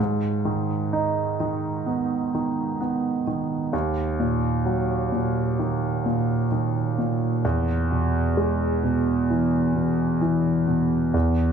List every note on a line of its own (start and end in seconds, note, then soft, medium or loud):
0.00 3.69 G#2 soft
0.45 1.39 D#3 soft
0.93 2.77 D#4 soft
1.40 2.33 D#3 soft
1.86 2.79 B3 soft
2.35 3.26 D#3 soft
2.81 3.71 B3 soft
3.27 3.72 D#3 soft
3.73 7.40 D#2 soft
4.19 5.11 A#2 soft
4.65 6.47 F#3 soft
5.12 6.04 A#2 soft
5.59 6.50 D#3 soft
6.06 6.97 A#2 soft
6.52 7.41 D#3 soft
6.98 7.43 A#2 soft
7.45 11.11 E2 medium
7.91 8.82 B2 soft
8.37 10.18 G#3 soft
8.84 9.74 B2 soft
9.30 10.20 E3 soft
9.75 10.66 B2 soft
10.21 11.12 E3 soft
10.68 11.13 B2 soft
11.14 11.52 E2 medium